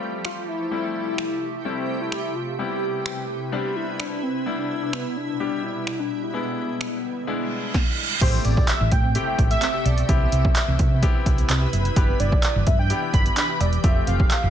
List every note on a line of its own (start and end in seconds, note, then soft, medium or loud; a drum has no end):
0.00 0.69 F3 medium
0.00 0.41 G3 medium
0.00 0.41 A3 medium
0.00 2.55 A3 medium
0.00 0.41 C4 medium
0.00 0.41 F4 medium
0.00 0.68 G4 medium
0.25 0.46 F4 medium
0.25 finger snap loud
0.48 1.61 E4 loud
0.71 4.43 C3 medium
0.71 1.35 G3 medium
0.71 1.35 A3 medium
0.71 1.35 C4 medium
0.71 1.35 E4 medium
0.71 2.57 G4 medium
1.18 finger snap loud
1.65 2.28 G3 medium
1.65 2.28 A3 medium
1.65 2.29 C4 medium
1.65 1.99 C4 medium
1.65 2.29 E4 medium
2.01 2.37 E4 loud
2.12 finger snap medium
2.36 2.58 F4 medium
2.59 3.22 G3 medium
2.59 3.22 B3 medium
2.59 3.22 C4 medium
2.59 7.70 E4 medium
2.59 3.22 E4 medium
2.59 3.77 G4 loud
2.59 4.44 B4 medium
3.06 finger snap loud
3.52 4.16 G3 medium
3.52 4.16 B3 medium
3.52 4.16 C4 medium
3.52 4.16 D4 medium
3.76 4.01 E4 medium
3.99 4.24 D4 medium
3.99 finger snap loud
4.23 4.48 C4 medium
4.46 6.32 B2 medium
4.46 5.10 G3 medium
4.46 6.32 G3 medium
4.46 5.10 B3 medium
4.46 4.60 B3 medium
4.46 5.10 D4 medium
4.46 5.10 E4 medium
4.59 4.82 D4 medium
4.82 4.95 D4 medium
4.93 5.18 B3 medium
4.93 finger snap loud
5.17 5.65 D4 loud
5.40 6.03 G3 medium
5.40 6.03 B3 medium
5.40 6.03 D4 medium
5.40 6.04 G4 medium
5.64 6.01 E4 loud
5.87 finger snap loud
6.00 6.24 D4 medium
6.23 6.33 E4 medium
6.33 7.73 D3 medium
6.33 6.97 G#3 medium
6.33 7.73 G#3 medium
6.33 6.97 B3 medium
6.33 7.94 B3 medium
6.33 6.97 D4 medium
6.33 6.97 E4 medium
6.81 finger snap loud
7.27 7.74 G#3 medium
7.27 7.74 B3 medium
7.27 7.75 D4 medium
7.27 7.75 E4 medium
7.27 reverse cymbal medium
7.74 kick loud
7.74 snare medium
8.21 8.37 A1 loud
8.21 10.07 C3 medium
8.21 8.29 E3 medium
8.21 8.85 A3 medium
8.21 10.07 A3 medium
8.21 8.85 C4 medium
8.21 8.85 E4 medium
8.21 10.07 G4 medium
8.21 8.85 G4 medium
8.21 8.46 C5 loud
8.21 kick loud
8.21 closed hi-hat medium
8.21 crash loud
8.21 impact medium
8.34 8.40 A3 medium
8.45 8.60 A1 medium
8.45 8.52 C4 medium
8.45 8.67 D5 medium
8.45 closed hi-hat medium
8.57 8.64 G4 loud
8.57 kick loud
8.68 8.93 E5 loud
8.68 clap loud
8.68 closed hi-hat medium
8.81 8.88 A1 medium
8.81 8.87 E3 medium
8.92 9.15 A2 loud
8.92 8.99 A3 medium
8.92 9.14 G5 loud
8.92 kick medium
8.92 closed hi-hat medium
9.04 9.10 C4 medium
9.15 9.78 A3 medium
9.15 9.78 C4 medium
9.15 9.79 E4 medium
9.15 9.79 G4 medium
9.15 9.48 G5 loud
9.15 closed hi-hat medium
9.27 9.34 E5 medium
9.39 9.54 A1 loud
9.39 kick medium
9.39 closed hi-hat medium
9.51 9.57 A3 medium
9.51 9.87 E5 loud
9.51 closed hi-hat medium
9.62 9.69 C4 loud
9.62 clap loud
9.62 closed hi-hat loud
9.74 9.81 G4 medium
9.85 10.01 B1 medium
9.85 10.10 D5 medium
9.85 9.93 E5 medium
9.85 closed hi-hat medium
9.98 closed hi-hat soft
10.09 10.24 C2 loud
10.09 11.95 C3 medium
10.09 10.16 E3 loud
10.09 10.72 B3 medium
10.09 10.72 C4 medium
10.09 10.72 E4 medium
10.09 11.95 E4 medium
10.09 10.72 G4 medium
10.09 13.80 B4 medium
10.09 11.03 E5 loud
10.09 kick loud
10.09 closed hi-hat medium
10.21 10.28 B3 medium
10.32 10.48 C2 loud
10.32 10.40 C4 medium
10.32 closed hi-hat medium
10.45 10.51 G4 loud
10.45 kick loud
10.56 clap loud
10.56 closed hi-hat medium
10.68 10.75 C2 loud
10.68 10.75 E3 medium
10.79 11.03 C3 loud
10.79 10.86 B3 medium
10.79 kick medium
10.79 closed hi-hat medium
10.92 10.98 C4 medium
11.02 11.66 B3 medium
11.02 11.66 C4 medium
11.02 11.66 E4 medium
11.02 11.66 G4 loud
11.02 kick medium
11.02 closed hi-hat medium
11.15 11.21 E5 medium
11.26 11.42 C2 medium
11.26 kick loud
11.26 closed hi-hat medium
11.38 11.45 B3 medium
11.38 closed hi-hat medium
11.49 11.65 C2 medium
11.49 11.57 C4 loud
11.49 clap loud
11.49 closed hi-hat loud
11.62 11.68 G4 medium
11.73 11.88 F#1 loud
11.73 11.80 E5 medium
11.73 closed hi-hat medium
11.85 closed hi-hat medium
11.96 12.12 G1 loud
11.96 12.04 E3 medium
11.96 13.82 E3 medium
11.96 12.60 B3 medium
11.96 12.60 D4 medium
11.96 12.60 E4 medium
11.96 14.50 G4 medium
11.96 12.60 G4 medium
11.96 12.21 B4 loud
11.96 kick loud
11.96 closed hi-hat loud
12.09 12.15 B3 medium
12.20 12.35 G1 medium
12.20 12.27 D4 medium
12.20 12.68 D5 loud
12.20 closed hi-hat medium
12.32 12.39 G4 medium
12.32 kick medium
12.43 clap loud
12.43 closed hi-hat medium
12.56 12.63 G1 loud
12.56 12.62 E3 medium
12.67 12.90 G2 loud
12.67 12.74 B3 medium
12.67 12.79 E5 loud
12.67 kick medium
12.67 closed hi-hat medium
12.79 12.85 D4 medium
12.79 13.11 G5 loud
12.90 13.53 B3 medium
12.90 13.53 D4 medium
12.90 13.54 E4 medium
12.90 13.54 G4 medium
12.90 closed hi-hat medium
13.02 13.09 E5 loud
13.14 13.29 G1 medium
13.14 13.35 B5 loud
13.14 kick loud
13.14 closed hi-hat medium
13.26 13.32 B3 medium
13.26 closed hi-hat medium
13.37 13.44 D4 loud
13.37 13.62 B5 loud
13.37 clap loud
13.37 closed hi-hat loud
13.49 13.56 G4 medium
13.60 13.76 E1 medium
13.60 13.85 D5 medium
13.60 13.68 E5 medium
13.60 closed hi-hat medium
13.73 closed hi-hat soft
13.84 13.99 F1 loud
13.84 13.91 F3 loud
13.84 14.50 F3 medium
13.84 14.47 A3 medium
13.84 14.50 A3 medium
13.84 14.47 C4 medium
13.84 14.47 F4 medium
13.84 14.47 G4 medium
13.84 14.07 E5 loud
13.84 kick loud
13.84 closed hi-hat loud
13.96 14.03 A3 medium
14.07 14.23 F1 loud
14.07 14.14 C4 medium
14.07 14.50 F5 loud
14.07 closed hi-hat medium
14.20 14.26 G4 medium
14.20 kick loud
14.31 clap loud
14.31 closed hi-hat medium
14.43 14.50 F1 medium
14.43 14.50 F3 medium